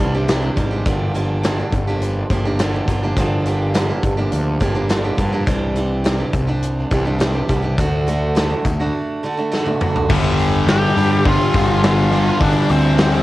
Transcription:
0.00 C2 E3 G3 D4 G4, closed hi-hat
0.15 G3 D4 G4
0.28 C3 E3 G3 D4 G4, snare, closed hi-hat
0.43 G3 D4 G4
0.56 G#1 E3 G3 D4 G4, kick, closed hi-hat
0.71 G3 D4 G4
0.86 G1 G2 D3 F3 A#3 D4 G4, kick, closed hi-hat
1.14 F3 A#3 D4 G4, closed hi-hat
1.43 G2 D3 F3 A#3 D4 G4, snare, closed hi-hat
1.59 F3 A#3 D4 G4
1.72 G1, muted steel-string acoustic guitar stroke, kick, closed hi-hat
1.87 F3 A#3 D4 G4
2.02 closed hi-hat
2.30 G1 F3 A#3 D4 G4, kick, closed hi-hat
2.45 F3 A#3 D4 G4
2.59 G2 D3 F3 A#3 D4 G4, snare, closed hi-hat
2.74 F3 A#3 D4 G4
2.88 G1 F3 A#3 D4 G4, kick, closed hi-hat
3.03 F3 A#3 D4 G4
3.17 G1 G2 D3 F3 A#3 D4 G4, kick, closed hi-hat
3.46 F3 A#3 D4 G4, closed hi-hat
3.74 G2 D3 F3 A#3 D4 G4, snare, closed hi-hat
3.89 F3 A#3 D4 G4
4.03 G1, muted steel-string acoustic guitar stroke, kick, closed hi-hat
4.17 F3 A#3 D4 G4
4.32 D2, closed hi-hat
4.60 G1 F3 A#3 D4 G4, kick, closed hi-hat
4.75 F3 A#3 D4 G4
4.89 G2 D3 F3 A#3 D4 G4, snare, closed hi-hat
5.04 F3 A#3 D4 G4
5.18 G2 F3 A#3 D4 G4, kick, closed hi-hat
5.33 F3 A#3 D4 G4
5.46 C2 C3 E3 G3 D4 G4, kick, closed hi-hat
5.76 E3 G3 D4 G4, closed hi-hat
6.04 C3 E3 G3 D4 G4, snare, closed hi-hat
6.19 G3 D4 G4
6.33 C2, muted steel-string acoustic guitar stroke, kick, closed hi-hat
6.47 G3 D4 G4
6.63 closed hi-hat
6.91 C2 E3 G3 D4 G4, kick, closed hi-hat
7.05 G3 D4 G4
7.19 C3 E3 G3 D4 G4, snare, closed hi-hat
7.33 G3 D4 G4
7.49 C2 E3 G3 D4 G4, kick, closed hi-hat
7.62 G3 D4 G4
7.78 D2 D3 A3 D4 F#4, kick, closed hi-hat
8.07 D3 A3 D4 F#4, closed hi-hat
8.35 D3 A3 D4 F#4, snare, closed hi-hat
8.50 A3 D4 F#4
8.65 D2, muted steel-string acoustic guitar stroke, kick, closed hi-hat
8.80 A3 D4 F#4
9.23 D3 A3 D4 F#4
9.37 A3 D4 F#4
9.52 D3 A3 D4 F#4, snare
9.65 A3 D4 F#4, high tom
9.80 D3 A3 D4 F#4, mid tom
9.96 A3 D4 F#4, floor tom
10.09 G1 G2 D3 G3, kick, crash
10.39 open hi-hat
10.67 G2 D3 G3 G4 G5, snare, open hi-hat
10.96 G2 D3 G3, open hi-hat
11.25 G1 G2 D3 G3 F4 F5, kick, open hi-hat
11.54 G1, kick, open hi-hat
11.83 G2 D3 G3 F4 F5, snare, open hi-hat
12.12 G2 D3 G3, open hi-hat
12.40 G1 G2 D3 G3 D4 D5, kick, open hi-hat
12.69 D2 C4 C5, open hi-hat
12.98 G2 D3 G3, snare, open hi-hat

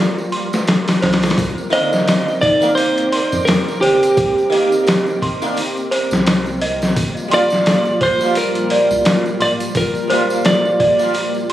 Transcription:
Already playing: G3 F4 A#4 C5 D5 C6
0.18 tambourine
0.32 C6, open hi-hat
0.53 snare, tambourine
0.67 snare, open hi-hat, tambourine
0.88 snare, open hi-hat, tambourine
1.02 C2 C5, snare, open hi-hat
1.13 snare, open hi-hat
1.23 snare, open hi-hat, tambourine
1.30 snare, open hi-hat
1.37 C2 C4 A#4 D6, kick, open hi-hat, tambourine
1.58 tambourine
1.70 D#3 A#3 C5 D#5, open hi-hat
1.75 D3
1.93 snare, tambourine
2.07 snare, open hi-hat, tambourine
2.28 tambourine
2.41 D#4 D5, kick, open hi-hat
2.61 D#3 A#3, tambourine
2.75 C5, open hi-hat, tambourine
2.97 closed hi-hat, tambourine
3.12 C6, open hi-hat
3.32 F2, tambourine
3.45 A#4, snare, open hi-hat, tambourine
3.68 tambourine
3.81 G1 G4 C5, open hi-hat
4.03 closed hi-hat, tambourine
4.17 C2, kick, open hi-hat, tambourine
4.38 tambourine
4.50 D#3 A#3 D#5, open hi-hat
4.72 tambourine
4.87 snare, open hi-hat, tambourine
5.06 tambourine
5.22 C6, kick, open hi-hat
5.42 D#3 A#3 D4, tambourine
5.57 open hi-hat, tambourine
5.77 tambourine
5.91 C5, open hi-hat
6.11 C2, snare, tambourine
6.27 snare, open hi-hat, tambourine
6.46 tambourine
6.62 D#5, open hi-hat
6.82 snare, tambourine
6.96 G1 G3 A#3 F4, kick, open hi-hat, tambourine
7.17 tambourine
7.28 G3 A#3 C6, open hi-hat
7.33 F4 D5
7.50 snare, tambourine
7.66 snare, open hi-hat, tambourine
7.85 tambourine
8.01 C5, kick, open hi-hat
8.19 G3 A#3, tambourine
8.24 F4
8.35 A#4, open hi-hat, tambourine
8.55 closed hi-hat, tambourine
8.70 D5, open hi-hat
8.91 C2, tambourine
9.05 snare, open hi-hat, tambourine
9.26 tambourine
9.40 D1 D5 C6, open hi-hat
9.60 closed hi-hat, tambourine
9.75 G1 A#4, kick, open hi-hat, tambourine
9.95 tambourine
10.08 G3 A#3 C5, open hi-hat
10.13 F4
10.30 tambourine
10.45 D5, snare, open hi-hat, tambourine
10.65 tambourine
10.80 D5, kick, open hi-hat
10.99 G3 A#3 F4, tambourine
11.14 open hi-hat, tambourine
11.35 tambourine

